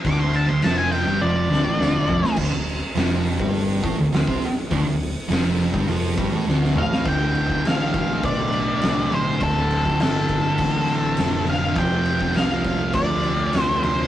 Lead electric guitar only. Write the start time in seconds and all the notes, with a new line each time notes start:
0.07 D6
0.20 C6
0.36 A5
0.49 C6
0.63 A5
0.78 G#5
0.92 G5
1.22 D5
6.78 F5
7.08 G5
7.67 F5
8.25 D5
9.14 C5
9.43 A4
10.01 A4
11.50 F5
11.78 G5
12.36 F5
12.95 D5
13.60 C5
13.83 C5